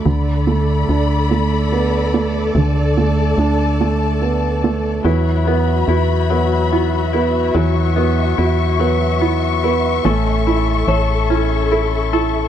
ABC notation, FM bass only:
X:1
M:6/8
L:1/8
Q:3/8=48
K:Bm
V:1 name="FM bass" clef=bass
D,,2 D,,4 | D,,2 D,,4 | E,,2 E,,4 | E,,2 E,,4 |
A,,,2 A,,,4 |]